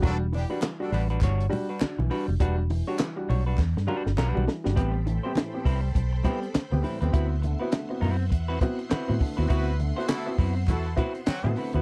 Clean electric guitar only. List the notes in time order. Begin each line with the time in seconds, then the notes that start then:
0.02 G3 D4 F#4 B4
0.20 muted clean electric guitar stroke
0.32 muted clean electric guitar stroke
0.50 G3 D4 F#4 B4
0.62 muted clean electric guitar stroke
0.80 muted clean electric guitar stroke
0.93 G3 D4 F#4 B4
1.10 G3 D4 F#4 B4
1.22 G3 D4 F#4 C#5
1.51 muted clean electric guitar stroke
1.69 G3 D4 F#4 B4
1.98 muted clean electric guitar stroke
2.10 G3 D4 F#4 B4
2.29 muted clean electric guitar stroke
2.40 G3 D4 F#4 B4
2.58 muted clean electric guitar stroke
2.70 muted clean electric guitar stroke
2.87 G3 D4 F#4 C#5
3.00 muted clean electric guitar stroke
3.17 muted clean electric guitar stroke
3.28 G3 D4 F#4 C#5
3.46 G3 D4 F#4 B4
3.77 muted clean electric guitar stroke
3.87 G3 D4 F#4 B4
4.05 muted clean electric guitar stroke
4.17 F#3 C#4 F4 A#4
4.29 G3 D4 F#4 B4
4.47 muted clean electric guitar stroke
4.65 muted clean electric guitar stroke
4.75 G3 C4 E4 B4
4.94 muted clean electric guitar stroke
5.06 muted clean electric guitar stroke
5.23 G3 C4 E4 C5
5.53 muted clean electric guitar stroke
5.65 G3 C4 E4 B4
5.83 muted clean electric guitar stroke
6.13 muted clean electric guitar stroke
6.23 G3 C4 E4 B4
6.42 muted clean electric guitar stroke
6.54 muted clean electric guitar stroke
6.71 muted clean electric guitar stroke
6.83 G3 C4 E4 B4
7.01 G3 C4 E4 B4
7.12 C4 E4 F#4 B4
7.30 muted clean electric guitar stroke
7.42 muted clean electric guitar stroke
7.59 C4 E4 F#4 B4
7.89 muted clean electric guitar stroke
8.01 C4 E4 F#4 B4
8.19 muted clean electric guitar stroke
8.30 muted clean electric guitar stroke
8.48 C4 E4 F#4 B4
8.79 muted clean electric guitar stroke
8.90 C4 E4 F#4 B4
9.20 muted clean electric guitar stroke
9.37 C4 E4 F#4 B4
9.48 C4 E4 F#4 B4
9.67 muted clean electric guitar stroke
9.79 muted clean electric guitar stroke
9.96 C4 E4 F#4 C5
10.26 muted clean electric guitar stroke
10.38 C4 E4 F#4 B4
10.57 muted clean electric guitar stroke
10.86 muted clean electric guitar stroke
10.97 C4 E4 F#4 B4
11.15 muted clean electric guitar stroke
11.28 muted clean electric guitar stroke
11.46 muted clean electric guitar stroke
11.57 C4 E4 F#4 B4
11.75 C4 E4 F#4 B4